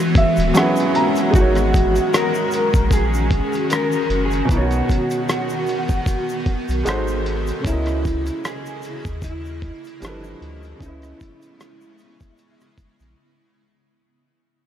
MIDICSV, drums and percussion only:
0, 0, Header, 1, 2, 480
1, 0, Start_track
1, 0, Tempo, 789474
1, 812, Time_signature, 4, 2, 24, 8
1, 8917, End_track
2, 0, Start_track
2, 0, Title_t, "Drums"
2, 92, Note_on_c, 9, 36, 89
2, 97, Note_on_c, 9, 42, 60
2, 153, Note_off_c, 9, 36, 0
2, 157, Note_off_c, 9, 42, 0
2, 222, Note_on_c, 9, 82, 48
2, 242, Note_on_c, 9, 42, 50
2, 283, Note_off_c, 9, 82, 0
2, 303, Note_off_c, 9, 42, 0
2, 332, Note_on_c, 9, 42, 72
2, 333, Note_on_c, 9, 82, 67
2, 349, Note_on_c, 9, 37, 116
2, 393, Note_off_c, 9, 42, 0
2, 394, Note_off_c, 9, 82, 0
2, 410, Note_off_c, 9, 37, 0
2, 463, Note_on_c, 9, 82, 51
2, 486, Note_on_c, 9, 42, 36
2, 524, Note_off_c, 9, 82, 0
2, 546, Note_off_c, 9, 42, 0
2, 578, Note_on_c, 9, 42, 61
2, 638, Note_off_c, 9, 42, 0
2, 704, Note_on_c, 9, 82, 48
2, 715, Note_on_c, 9, 42, 45
2, 764, Note_off_c, 9, 82, 0
2, 775, Note_off_c, 9, 42, 0
2, 813, Note_on_c, 9, 36, 109
2, 822, Note_on_c, 9, 42, 80
2, 822, Note_on_c, 9, 82, 66
2, 874, Note_off_c, 9, 36, 0
2, 883, Note_off_c, 9, 42, 0
2, 883, Note_off_c, 9, 82, 0
2, 944, Note_on_c, 9, 42, 38
2, 952, Note_on_c, 9, 37, 35
2, 953, Note_on_c, 9, 82, 44
2, 1005, Note_off_c, 9, 42, 0
2, 1012, Note_off_c, 9, 37, 0
2, 1013, Note_off_c, 9, 82, 0
2, 1058, Note_on_c, 9, 82, 41
2, 1059, Note_on_c, 9, 36, 80
2, 1071, Note_on_c, 9, 42, 61
2, 1119, Note_off_c, 9, 82, 0
2, 1120, Note_off_c, 9, 36, 0
2, 1132, Note_off_c, 9, 42, 0
2, 1189, Note_on_c, 9, 82, 48
2, 1190, Note_on_c, 9, 42, 43
2, 1250, Note_off_c, 9, 82, 0
2, 1251, Note_off_c, 9, 42, 0
2, 1300, Note_on_c, 9, 82, 68
2, 1301, Note_on_c, 9, 42, 73
2, 1303, Note_on_c, 9, 37, 95
2, 1361, Note_off_c, 9, 82, 0
2, 1362, Note_off_c, 9, 42, 0
2, 1364, Note_off_c, 9, 37, 0
2, 1425, Note_on_c, 9, 82, 45
2, 1485, Note_off_c, 9, 82, 0
2, 1528, Note_on_c, 9, 82, 49
2, 1542, Note_on_c, 9, 42, 63
2, 1589, Note_off_c, 9, 82, 0
2, 1603, Note_off_c, 9, 42, 0
2, 1665, Note_on_c, 9, 36, 86
2, 1666, Note_on_c, 9, 82, 55
2, 1674, Note_on_c, 9, 42, 40
2, 1726, Note_off_c, 9, 36, 0
2, 1727, Note_off_c, 9, 82, 0
2, 1735, Note_off_c, 9, 42, 0
2, 1768, Note_on_c, 9, 36, 82
2, 1773, Note_on_c, 9, 82, 61
2, 1778, Note_on_c, 9, 42, 86
2, 1829, Note_off_c, 9, 36, 0
2, 1834, Note_off_c, 9, 82, 0
2, 1839, Note_off_c, 9, 42, 0
2, 1909, Note_on_c, 9, 82, 55
2, 1970, Note_off_c, 9, 82, 0
2, 2010, Note_on_c, 9, 36, 89
2, 2015, Note_on_c, 9, 42, 57
2, 2071, Note_off_c, 9, 36, 0
2, 2076, Note_off_c, 9, 42, 0
2, 2144, Note_on_c, 9, 82, 49
2, 2160, Note_on_c, 9, 42, 51
2, 2205, Note_off_c, 9, 82, 0
2, 2221, Note_off_c, 9, 42, 0
2, 2250, Note_on_c, 9, 42, 79
2, 2257, Note_on_c, 9, 82, 70
2, 2267, Note_on_c, 9, 37, 117
2, 2311, Note_off_c, 9, 42, 0
2, 2318, Note_off_c, 9, 82, 0
2, 2328, Note_off_c, 9, 37, 0
2, 2383, Note_on_c, 9, 82, 49
2, 2443, Note_off_c, 9, 82, 0
2, 2495, Note_on_c, 9, 42, 60
2, 2555, Note_off_c, 9, 42, 0
2, 2621, Note_on_c, 9, 82, 41
2, 2633, Note_on_c, 9, 42, 41
2, 2681, Note_off_c, 9, 82, 0
2, 2694, Note_off_c, 9, 42, 0
2, 2730, Note_on_c, 9, 36, 118
2, 2739, Note_on_c, 9, 82, 75
2, 2740, Note_on_c, 9, 42, 77
2, 2791, Note_off_c, 9, 36, 0
2, 2799, Note_off_c, 9, 82, 0
2, 2801, Note_off_c, 9, 42, 0
2, 2862, Note_on_c, 9, 42, 34
2, 2868, Note_on_c, 9, 82, 43
2, 2923, Note_off_c, 9, 42, 0
2, 2929, Note_off_c, 9, 82, 0
2, 2974, Note_on_c, 9, 82, 42
2, 2976, Note_on_c, 9, 36, 79
2, 2987, Note_on_c, 9, 42, 64
2, 3035, Note_off_c, 9, 82, 0
2, 3037, Note_off_c, 9, 36, 0
2, 3048, Note_off_c, 9, 42, 0
2, 3104, Note_on_c, 9, 82, 53
2, 3107, Note_on_c, 9, 42, 41
2, 3165, Note_off_c, 9, 82, 0
2, 3168, Note_off_c, 9, 42, 0
2, 3216, Note_on_c, 9, 82, 67
2, 3217, Note_on_c, 9, 42, 71
2, 3219, Note_on_c, 9, 37, 102
2, 3277, Note_off_c, 9, 82, 0
2, 3278, Note_off_c, 9, 42, 0
2, 3280, Note_off_c, 9, 37, 0
2, 3340, Note_on_c, 9, 82, 48
2, 3401, Note_off_c, 9, 82, 0
2, 3444, Note_on_c, 9, 82, 47
2, 3460, Note_on_c, 9, 42, 61
2, 3505, Note_off_c, 9, 82, 0
2, 3521, Note_off_c, 9, 42, 0
2, 3581, Note_on_c, 9, 82, 50
2, 3582, Note_on_c, 9, 36, 88
2, 3591, Note_on_c, 9, 42, 41
2, 3642, Note_off_c, 9, 82, 0
2, 3643, Note_off_c, 9, 36, 0
2, 3652, Note_off_c, 9, 42, 0
2, 3686, Note_on_c, 9, 36, 94
2, 3688, Note_on_c, 9, 82, 62
2, 3695, Note_on_c, 9, 42, 90
2, 3747, Note_off_c, 9, 36, 0
2, 3749, Note_off_c, 9, 82, 0
2, 3756, Note_off_c, 9, 42, 0
2, 3826, Note_on_c, 9, 82, 51
2, 3886, Note_off_c, 9, 82, 0
2, 3929, Note_on_c, 9, 36, 102
2, 3932, Note_on_c, 9, 42, 55
2, 3989, Note_off_c, 9, 36, 0
2, 3993, Note_off_c, 9, 42, 0
2, 4064, Note_on_c, 9, 82, 47
2, 4079, Note_on_c, 9, 42, 47
2, 4125, Note_off_c, 9, 82, 0
2, 4140, Note_off_c, 9, 42, 0
2, 4170, Note_on_c, 9, 42, 87
2, 4175, Note_on_c, 9, 82, 67
2, 4187, Note_on_c, 9, 37, 118
2, 4231, Note_off_c, 9, 42, 0
2, 4236, Note_off_c, 9, 82, 0
2, 4248, Note_off_c, 9, 37, 0
2, 4302, Note_on_c, 9, 82, 50
2, 4363, Note_off_c, 9, 82, 0
2, 4415, Note_on_c, 9, 42, 65
2, 4476, Note_off_c, 9, 42, 0
2, 4541, Note_on_c, 9, 82, 49
2, 4551, Note_on_c, 9, 42, 46
2, 4602, Note_off_c, 9, 82, 0
2, 4612, Note_off_c, 9, 42, 0
2, 4649, Note_on_c, 9, 36, 113
2, 4656, Note_on_c, 9, 42, 75
2, 4660, Note_on_c, 9, 82, 71
2, 4709, Note_off_c, 9, 36, 0
2, 4717, Note_off_c, 9, 42, 0
2, 4721, Note_off_c, 9, 82, 0
2, 4778, Note_on_c, 9, 42, 36
2, 4785, Note_on_c, 9, 37, 36
2, 4790, Note_on_c, 9, 82, 46
2, 4838, Note_off_c, 9, 42, 0
2, 4846, Note_off_c, 9, 37, 0
2, 4850, Note_off_c, 9, 82, 0
2, 4893, Note_on_c, 9, 82, 42
2, 4896, Note_on_c, 9, 36, 88
2, 4907, Note_on_c, 9, 42, 59
2, 4954, Note_off_c, 9, 82, 0
2, 4956, Note_off_c, 9, 36, 0
2, 4968, Note_off_c, 9, 42, 0
2, 5024, Note_on_c, 9, 82, 52
2, 5025, Note_on_c, 9, 42, 46
2, 5085, Note_off_c, 9, 82, 0
2, 5086, Note_off_c, 9, 42, 0
2, 5135, Note_on_c, 9, 82, 61
2, 5137, Note_on_c, 9, 42, 68
2, 5139, Note_on_c, 9, 37, 104
2, 5196, Note_off_c, 9, 82, 0
2, 5197, Note_off_c, 9, 42, 0
2, 5199, Note_off_c, 9, 37, 0
2, 5264, Note_on_c, 9, 82, 46
2, 5325, Note_off_c, 9, 82, 0
2, 5365, Note_on_c, 9, 82, 52
2, 5380, Note_on_c, 9, 42, 58
2, 5426, Note_off_c, 9, 82, 0
2, 5441, Note_off_c, 9, 42, 0
2, 5503, Note_on_c, 9, 36, 99
2, 5504, Note_on_c, 9, 82, 51
2, 5511, Note_on_c, 9, 42, 41
2, 5563, Note_off_c, 9, 36, 0
2, 5565, Note_off_c, 9, 82, 0
2, 5572, Note_off_c, 9, 42, 0
2, 5606, Note_on_c, 9, 36, 95
2, 5606, Note_on_c, 9, 82, 69
2, 5617, Note_on_c, 9, 42, 87
2, 5667, Note_off_c, 9, 36, 0
2, 5667, Note_off_c, 9, 82, 0
2, 5678, Note_off_c, 9, 42, 0
2, 5749, Note_on_c, 9, 82, 56
2, 5810, Note_off_c, 9, 82, 0
2, 5850, Note_on_c, 9, 36, 90
2, 5854, Note_on_c, 9, 42, 55
2, 5910, Note_off_c, 9, 36, 0
2, 5915, Note_off_c, 9, 42, 0
2, 5985, Note_on_c, 9, 82, 45
2, 6001, Note_on_c, 9, 42, 53
2, 6046, Note_off_c, 9, 82, 0
2, 6062, Note_off_c, 9, 42, 0
2, 6092, Note_on_c, 9, 42, 86
2, 6096, Note_on_c, 9, 82, 75
2, 6109, Note_on_c, 9, 37, 118
2, 6153, Note_off_c, 9, 42, 0
2, 6157, Note_off_c, 9, 82, 0
2, 6169, Note_off_c, 9, 37, 0
2, 6224, Note_on_c, 9, 82, 47
2, 6285, Note_off_c, 9, 82, 0
2, 6337, Note_on_c, 9, 42, 58
2, 6398, Note_off_c, 9, 42, 0
2, 6460, Note_on_c, 9, 82, 46
2, 6474, Note_on_c, 9, 42, 44
2, 6521, Note_off_c, 9, 82, 0
2, 6535, Note_off_c, 9, 42, 0
2, 6569, Note_on_c, 9, 36, 117
2, 6579, Note_on_c, 9, 42, 81
2, 6579, Note_on_c, 9, 82, 65
2, 6630, Note_off_c, 9, 36, 0
2, 6640, Note_off_c, 9, 42, 0
2, 6640, Note_off_c, 9, 82, 0
2, 6700, Note_on_c, 9, 42, 35
2, 6708, Note_on_c, 9, 37, 35
2, 6708, Note_on_c, 9, 82, 44
2, 6761, Note_off_c, 9, 42, 0
2, 6768, Note_off_c, 9, 37, 0
2, 6769, Note_off_c, 9, 82, 0
2, 6813, Note_on_c, 9, 82, 41
2, 6816, Note_on_c, 9, 36, 90
2, 6826, Note_on_c, 9, 42, 62
2, 6873, Note_off_c, 9, 82, 0
2, 6877, Note_off_c, 9, 36, 0
2, 6887, Note_off_c, 9, 42, 0
2, 6943, Note_on_c, 9, 82, 49
2, 6946, Note_on_c, 9, 42, 48
2, 7004, Note_off_c, 9, 82, 0
2, 7007, Note_off_c, 9, 42, 0
2, 7055, Note_on_c, 9, 42, 67
2, 7055, Note_on_c, 9, 82, 72
2, 7057, Note_on_c, 9, 37, 102
2, 7116, Note_off_c, 9, 42, 0
2, 7116, Note_off_c, 9, 82, 0
2, 7118, Note_off_c, 9, 37, 0
2, 7180, Note_on_c, 9, 82, 45
2, 7240, Note_off_c, 9, 82, 0
2, 7285, Note_on_c, 9, 82, 49
2, 7298, Note_on_c, 9, 42, 58
2, 7345, Note_off_c, 9, 82, 0
2, 7359, Note_off_c, 9, 42, 0
2, 7420, Note_on_c, 9, 82, 51
2, 7422, Note_on_c, 9, 36, 96
2, 7431, Note_on_c, 9, 42, 45
2, 7481, Note_off_c, 9, 82, 0
2, 7483, Note_off_c, 9, 36, 0
2, 7492, Note_off_c, 9, 42, 0
2, 7525, Note_on_c, 9, 82, 63
2, 7533, Note_on_c, 9, 42, 81
2, 7586, Note_off_c, 9, 82, 0
2, 7594, Note_off_c, 9, 42, 0
2, 7664, Note_on_c, 9, 82, 57
2, 7671, Note_on_c, 9, 37, 35
2, 7725, Note_off_c, 9, 82, 0
2, 7732, Note_off_c, 9, 37, 0
2, 7768, Note_on_c, 9, 36, 91
2, 7769, Note_on_c, 9, 82, 44
2, 7771, Note_on_c, 9, 42, 56
2, 7829, Note_off_c, 9, 36, 0
2, 7830, Note_off_c, 9, 82, 0
2, 7831, Note_off_c, 9, 42, 0
2, 7902, Note_on_c, 9, 82, 45
2, 7918, Note_on_c, 9, 42, 47
2, 7962, Note_off_c, 9, 82, 0
2, 7978, Note_off_c, 9, 42, 0
2, 8917, End_track
0, 0, End_of_file